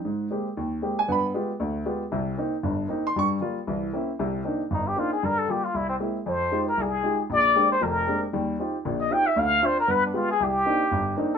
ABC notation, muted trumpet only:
X:1
M:4/4
L:1/8
Q:"Swing" 1/4=232
K:Cphr
V:1 name="Muted trumpet"
z8 | z8 | z8 | z8 |
[K:Cm] z4 E G F A | B =A G F =E C z2 | c3 B A3 z | d3 c B3 z |
z4 z e g =e | f2 c B =B D F A | G6 z =A |]